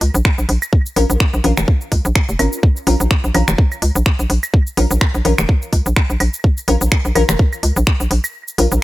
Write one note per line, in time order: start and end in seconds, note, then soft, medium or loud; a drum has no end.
0.01 0.10 C#2 medium
0.01 open hi-hat medium
0.01 open hi-hat loud
0.14 0.22 A#1 loud
0.14 shaker medium
0.25 finger snap medium
0.25 kick loud
0.38 0.46 A#1 medium
0.38 shaker soft
0.49 0.58 A#1 loud
0.49 open hi-hat medium
0.49 open hi-hat loud
0.62 claves medium
0.62 shaker medium
0.73 kick loud
0.86 shaker soft
0.96 1.06 A#1 loud
0.96 1.04 C#4 medium
0.96 1.04 F4 medium
0.96 1.04 A#4 medium
0.96 open hi-hat medium
0.96 open hi-hat loud
1.10 1.17 A#1 loud
1.10 shaker soft
1.20 finger snap medium
1.20 kick loud
1.34 1.41 A#1 medium
1.34 shaker soft
1.44 1.53 A#1 loud
1.44 1.52 C#4 loud
1.44 1.52 F4 medium
1.44 1.52 A#4 loud
1.44 open hi-hat medium
1.44 open hi-hat loud
1.44 low conga medium
1.57 1.65 F1 medium
1.57 finger snap medium
1.57 low conga medium
1.57 shaker medium
1.68 kick loud
1.81 shaker soft
1.92 2.01 C#2 medium
1.92 kick medium
1.92 open hi-hat medium
1.92 open hi-hat loud
2.05 2.12 A#1 loud
2.05 shaker medium
2.15 finger snap medium
2.15 kick loud
2.29 2.36 F1 medium
2.29 shaker soft
2.39 2.48 G#1 medium
2.39 2.47 C#4 medium
2.39 2.47 F4 medium
2.39 2.47 A#4 medium
2.39 open hi-hat medium
2.39 open hi-hat loud
2.39 claves medium
2.53 shaker medium
2.63 kick loud
2.76 shaker soft
2.87 2.96 A#1 loud
2.87 2.94 C#4 medium
2.87 2.94 F4 medium
2.87 2.94 A#4 loud
2.87 open hi-hat medium
3.00 3.07 A#1 loud
3.00 shaker medium
3.11 finger snap medium
3.11 kick loud
3.24 3.31 A#1 medium
3.24 shaker soft
3.35 3.44 A#1 loud
3.35 3.42 C#4 medium
3.35 3.42 F4 medium
3.35 3.42 A#4 loud
3.35 open hi-hat medium
3.35 low conga medium
3.35 claves medium
3.48 3.55 F1 medium
3.48 finger snap medium
3.48 low conga medium
3.48 shaker medium
3.58 kick loud
3.72 claves medium
3.72 shaker soft
3.82 3.91 C#2 medium
3.82 open hi-hat medium
3.96 4.03 A#1 loud
3.96 shaker medium
4.06 finger snap medium
4.06 kick loud
4.19 4.26 A#1 medium
4.19 shaker soft
4.30 4.39 A#1 loud
4.30 open hi-hat medium
4.43 claves medium
4.43 shaker medium
4.54 kick loud
4.67 shaker soft
4.77 4.87 A#1 loud
4.77 4.85 C#4 medium
4.77 4.85 F4 medium
4.77 4.85 A#4 medium
4.77 open hi-hat medium
4.91 4.98 A#1 loud
4.91 shaker medium
5.01 finger snap medium
5.01 kick loud
5.15 5.22 A#1 medium
5.15 shaker soft
5.25 5.34 A#1 loud
5.25 5.33 C#4 medium
5.25 5.33 F4 medium
5.25 5.33 A#4 loud
5.25 open hi-hat medium
5.25 low conga medium
5.38 5.46 F1 loud
5.38 finger snap medium
5.38 low conga medium
5.38 shaker medium
5.49 kick loud
5.62 shaker soft
5.73 5.82 C#2 medium
5.73 kick medium
5.73 open hi-hat medium
5.86 5.93 A#1 loud
5.86 shaker medium
5.96 finger snap medium
5.96 kick loud
6.10 6.17 A#1 medium
6.10 shaker soft
6.20 6.29 A#1 loud
6.20 open hi-hat medium
6.20 claves medium
6.34 shaker medium
6.44 kick loud
6.57 shaker soft
6.68 6.77 A#1 loud
6.68 6.75 C#4 loud
6.68 6.75 F4 medium
6.68 6.75 A#4 loud
6.68 open hi-hat medium
6.81 6.88 A#1 medium
6.81 shaker medium
6.92 finger snap medium
6.92 kick loud
7.05 7.12 A#1 medium
7.05 shaker soft
7.15 7.25 A#1 loud
7.15 7.23 C#4 loud
7.15 7.23 F4 medium
7.15 7.23 A#4 loud
7.15 open hi-hat medium
7.15 low conga medium
7.15 claves medium
7.29 7.36 F1 medium
7.29 finger snap medium
7.29 low conga medium
7.29 shaker medium
7.39 kick loud
7.53 claves medium
7.53 shaker soft
7.63 7.72 C#2 medium
7.63 open hi-hat medium
7.76 7.84 A#1 loud
7.76 shaker medium
7.87 finger snap medium
7.87 kick loud
8.00 8.07 A#1 medium
8.00 shaker soft
8.11 8.20 A#1 loud
8.11 open hi-hat medium
8.24 claves medium
8.24 shaker medium
8.48 shaker soft
8.58 8.68 A#1 loud
8.58 8.66 C#4 medium
8.58 8.66 F4 medium
8.58 8.66 A#4 medium
8.58 open hi-hat medium
8.72 8.79 A#1 loud
8.72 shaker medium